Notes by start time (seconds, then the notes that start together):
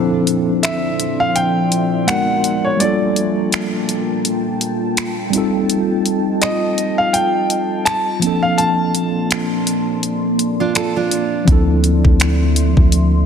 Already playing: F3 C4 D4 E4 A4 C5 D5 E5 C6
0.27 closed hi-hat
0.63 E5, finger snap, closed hi-hat
1.00 closed hi-hat
1.20 F5
1.36 G5, closed hi-hat
1.72 closed hi-hat
2.07 G#3 B3 D#4 F#4 A#4 F#5, finger snap, closed hi-hat
2.44 closed hi-hat
2.65 C#5
2.77 G3 A#3 D4 F4 D5 G5 A5, closed hi-hat
2.83 F4 A4
3.16 closed hi-hat
3.52 finger snap, closed hi-hat
3.89 closed hi-hat
4.25 closed hi-hat
4.61 closed hi-hat
4.97 finger snap, closed hi-hat
5.30 G3 C4 D#4 D#5, closed hi-hat
5.36 F4 A4
5.70 closed hi-hat
6.06 closed hi-hat
6.42 D#5, finger snap, closed hi-hat
6.78 closed hi-hat
6.98 F5
7.13 G5, closed hi-hat
7.50 closed hi-hat
7.85 A5, finger snap, closed hi-hat
8.19 F3 A#3 C4 D5 C6, closed hi-hat
8.25 D4 A4
8.43 F5
8.58 A5, closed hi-hat
8.95 closed hi-hat
9.31 finger snap, closed hi-hat
9.67 closed hi-hat
10.03 closed hi-hat
10.39 closed hi-hat
10.60 D4 F4
10.75 F4 A4, finger snap, closed hi-hat
10.96 D4 F4
11.11 closed hi-hat
11.45 D2 F3 C4 D4 E5 C6, kick, closed hi-hat
11.50 E4 A4
11.84 closed hi-hat
12.05 D2, kick
12.20 finger snap, closed hi-hat
12.56 closed hi-hat
12.77 D2, kick
12.92 closed hi-hat